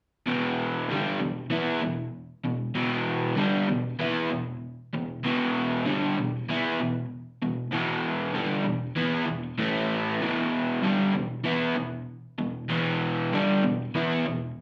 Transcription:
0.26 E2 B2 E3
0.89 G2 D3 G3
1.20 E2 B2
1.50 E3 B3 E4
1.82 E2 B2
2.45 E2 B2
2.75 E2 B2 E3
3.36 G2 D3 G3
3.68 E2 B2
3.99 E3 B3 E4
4.31 E2 B2
4.93 E2 B2
5.24 E2 B2 E3
5.86 G2 D3 G3
6.18 E2 B2
6.49 E3 B3 E4
6.80 E2 B2
7.42 E2 B2
7.72 E2 B2 E3
8.34 G2 D3 G3
8.65 E2 B2
8.96 E3 B3 E4
9.27 E2 B2
9.58 A2 E3 A3
10.21 E2 B2 E3
10.82 G2 D3 G3
11.14 E2 B2
11.44 E3 B3 E4
11.75 E2 B2
12.38 E2 B2
12.69 E2 B2 E3
13.33 G2 D3 G3
13.64 E2 B2
13.95 E3 B3 E4
14.26 E2 B2

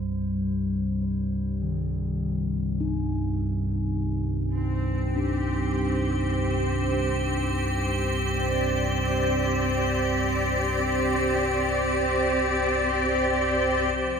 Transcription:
Already playing: C2 G2 G3
1.62 D#3
2.81 D#4
4.55 C4 C5
5.14 D4 G4
8.35 D5
13.95 C2 F3 C5

